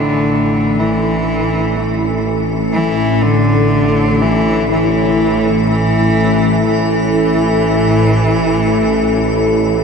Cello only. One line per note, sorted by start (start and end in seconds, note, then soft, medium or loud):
0.00 0.81 D3 medium
0.79 2.25 E3 medium
2.73 3.23 E3 medium
3.22 4.23 D3 medium
4.22 4.70 E3 medium
4.70 5.64 E3 medium
5.69 6.62 E3 medium
6.67 9.84 E3 medium